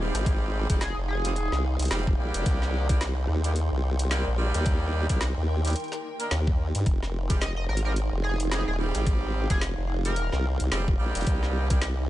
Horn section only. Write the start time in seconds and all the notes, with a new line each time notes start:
0.00 G3 G#3 C4 D#4 G4
0.70 G3 G#3 C4 D#4 G4
1.25 G3 G#3 C4 D#4 G4
1.92 G3 G#3 C4 D#4 G4
2.19 G3 A#3 D4 D#4 G4
2.90 G3 A#3 D4 D#4 G4
3.45 G3 A#3 D4 D#4 G4
4.11 G3 A#3 D4 D#4 G4
4.38 G3 A#3 D4 D#4 G4
5.10 G3 A#3 D4 D#4 G4
5.65 G3 A#3 D4 D#4 G4
6.20 A#3 D4 D#4 A#4
7.30 G3 G#3 C4 D#4 G4
7.85 G3 G#3 C4 D#4 G4
8.52 G3 G#3 C4 D#4 G4
8.79 G3 G#3 C4 D#4 G4
9.50 G3 G#3 C4 D#4 G4
10.05 G3 G#3 C4 D#4 G4
10.72 G3 G#3 C4 D#4 G4
11.00 G3 A#3 D4 D#4 G4
11.70 G3 A#3 D4 D#4 G4